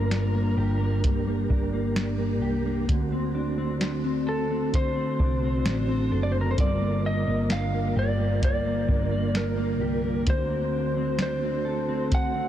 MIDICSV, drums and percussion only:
0, 0, Header, 1, 2, 480
1, 0, Start_track
1, 0, Key_signature, -2, "minor"
1, 0, Tempo, 923077
1, 1501, Time_signature, 4, 2, 24, 8
1, 6492, End_track
2, 0, Start_track
2, 0, Title_t, "Drums"
2, 59, Note_on_c, 9, 38, 89
2, 60, Note_on_c, 9, 42, 53
2, 111, Note_off_c, 9, 38, 0
2, 112, Note_off_c, 9, 42, 0
2, 541, Note_on_c, 9, 36, 74
2, 541, Note_on_c, 9, 42, 65
2, 593, Note_off_c, 9, 36, 0
2, 593, Note_off_c, 9, 42, 0
2, 780, Note_on_c, 9, 36, 77
2, 832, Note_off_c, 9, 36, 0
2, 1020, Note_on_c, 9, 38, 96
2, 1021, Note_on_c, 9, 42, 57
2, 1072, Note_off_c, 9, 38, 0
2, 1073, Note_off_c, 9, 42, 0
2, 1501, Note_on_c, 9, 36, 88
2, 1503, Note_on_c, 9, 42, 67
2, 1553, Note_off_c, 9, 36, 0
2, 1555, Note_off_c, 9, 42, 0
2, 1981, Note_on_c, 9, 38, 94
2, 1982, Note_on_c, 9, 42, 51
2, 2033, Note_off_c, 9, 38, 0
2, 2034, Note_off_c, 9, 42, 0
2, 2462, Note_on_c, 9, 36, 71
2, 2463, Note_on_c, 9, 42, 64
2, 2514, Note_off_c, 9, 36, 0
2, 2515, Note_off_c, 9, 42, 0
2, 2702, Note_on_c, 9, 36, 74
2, 2754, Note_off_c, 9, 36, 0
2, 2941, Note_on_c, 9, 38, 99
2, 2941, Note_on_c, 9, 42, 58
2, 2993, Note_off_c, 9, 38, 0
2, 2993, Note_off_c, 9, 42, 0
2, 3422, Note_on_c, 9, 36, 95
2, 3422, Note_on_c, 9, 42, 70
2, 3474, Note_off_c, 9, 36, 0
2, 3474, Note_off_c, 9, 42, 0
2, 3900, Note_on_c, 9, 38, 88
2, 3901, Note_on_c, 9, 42, 50
2, 3952, Note_off_c, 9, 38, 0
2, 3953, Note_off_c, 9, 42, 0
2, 4381, Note_on_c, 9, 36, 73
2, 4382, Note_on_c, 9, 42, 64
2, 4433, Note_off_c, 9, 36, 0
2, 4434, Note_off_c, 9, 42, 0
2, 4620, Note_on_c, 9, 36, 74
2, 4672, Note_off_c, 9, 36, 0
2, 4861, Note_on_c, 9, 38, 90
2, 4862, Note_on_c, 9, 42, 59
2, 4913, Note_off_c, 9, 38, 0
2, 4914, Note_off_c, 9, 42, 0
2, 5338, Note_on_c, 9, 42, 72
2, 5340, Note_on_c, 9, 36, 93
2, 5390, Note_off_c, 9, 42, 0
2, 5392, Note_off_c, 9, 36, 0
2, 5817, Note_on_c, 9, 38, 88
2, 5818, Note_on_c, 9, 42, 51
2, 5869, Note_off_c, 9, 38, 0
2, 5870, Note_off_c, 9, 42, 0
2, 6300, Note_on_c, 9, 36, 78
2, 6301, Note_on_c, 9, 42, 67
2, 6352, Note_off_c, 9, 36, 0
2, 6353, Note_off_c, 9, 42, 0
2, 6492, End_track
0, 0, End_of_file